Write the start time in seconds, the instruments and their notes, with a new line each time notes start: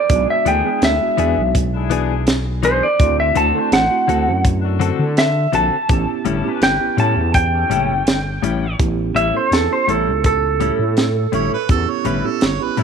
Already playing: electric slide guitar D5
0.09 fm bass B1, tine electric piano G#3 B3 D4 F#4, horn section D4 E4 G#4, kick, closed hi-hat
0.30 electric slide guitar E5
0.45 fm bass D2, clean electric guitar E3 B3 D4 G#4, electric slide guitar G5, closed hi-hat
0.64 tine electric piano G#3 B3 D4 G#4, horn section D4 E4 G#4
0.82 fm bass D2, electric slide guitar E5, snare, closed hi-hat
1.01 fm bass E1, tine electric piano G#3 B3 D4 F#4
1.18 fm bass E2, clean electric guitar E3 B3 D4 G#4, closed hi-hat
1.37 fm bass B1
1.55 kick, closed hi-hat
1.73 horn section D4 E4 G#4
1.90 clean electric guitar E3 B3 D4 G#4, closed hi-hat
2.27 snare, closed hi-hat
2.63 clean electric guitar E3 B3 D4 G#4, electric slide guitar C5, closed hi-hat
2.83 electric slide guitar D5
2.99 fm bass D2, tine electric piano A3 C4 E4 F#4, horn section D4 F#4 C5, kick, closed hi-hat
3.20 electric slide guitar E5
3.35 fm bass D2, clean electric guitar D3 C4 F#4 A4, electric slide guitar A5, closed hi-hat
3.54 tine electric piano A3 C4 E4 A4, horn section D4 F#4 C5
3.72 fm bass A1, electric slide guitar F#5, snare, closed hi-hat
3.90 tine electric piano A3 C4 E4 F#4
4.08 fm bass D2, clean electric guitar D3 C4 F#4 A4, closed hi-hat
4.27 fm bass F#2
4.45 kick, closed hi-hat
4.62 horn section D4 F#4 A4
4.80 clean electric guitar D3 C4 F#4 A4, closed hi-hat
4.99 fm bass D3
5.17 electric slide guitar E5, snare, closed hi-hat
5.52 fm bass A#1, clean electric guitar D3 C4 F#4 A4, electric slide guitar A5, closed hi-hat
5.89 fm bass A1, tine electric piano B3 C#4 E4 G4, horn section C#4 G4 A4, kick, closed hi-hat
6.25 fm bass G1, clean electric guitar A2 G3 C#4 E4, closed hi-hat
6.43 tine electric piano B3 C#4 E4 G4, horn section C#4 G4 B4
6.62 fm bass G1, electric slide guitar G5, snare, closed hi-hat
6.80 fm bass A1, tine electric piano B3 C#4 E4 G4
6.97 clean electric guitar A2 G3 C#4 E4, fm bass A2, electric slide guitar A5, closed hi-hat
7.16 fm bass E2
7.34 electric slide guitar G5, kick, closed hi-hat
7.53 horn section C#4 G4 A4
7.70 fm bass F#1, clean electric guitar A2 G3 C#4 E4, closed hi-hat
8.06 fm bass G1, snare, closed hi-hat
8.42 fm bass A1, clean electric guitar A2 G3 C#4 E4, closed hi-hat
8.79 fm bass A1, tine electric piano B3 C#4 E4 G4, kick, closed hi-hat
9.15 fm bass A1, clean electric guitar A2 G3 C#4 E4, electric slide guitar E5, closed hi-hat
9.34 tine electric piano B3 C#4 E4 A4, electric slide guitar C5
9.51 fm bass E2, electric slide guitar A4, snare, closed hi-hat
9.70 tine electric piano B3 C#4 E4 G4, electric slide guitar C5
9.88 fm bass A1, clean electric guitar A2 G3 C#4 E4, electric slide guitar A4, closed hi-hat
10.07 fm bass C#2
10.24 electric slide guitar A4, kick, closed hi-hat
10.60 clean electric guitar A2 G3 C#4 E4, closed hi-hat
10.79 fm bass A2
10.97 snare, closed hi-hat
11.32 fm bass G1, clean electric guitar A2 G3 C#4 E4, harmonica C#5, closed hi-hat
11.54 harmonica B4
11.69 fm bass E2, tine electric piano B3 C#4 E4 G4, harmonica A4, kick, closed hi-hat
11.90 harmonica C#5
12.05 fm bass G1, clean electric guitar A2 G3 C#4 E4, harmonica B4, closed hi-hat
12.24 tine electric piano B3 C#4 E4 G4, harmonica A4
12.41 fm bass G1, snare, closed hi-hat
12.45 harmonica C#5
12.60 fm bass A1, tine electric piano B3 C#4 E4 G4
12.64 harmonica B4
12.77 clean electric guitar A2 G3 C#4 E4, fm bass A2, closed hi-hat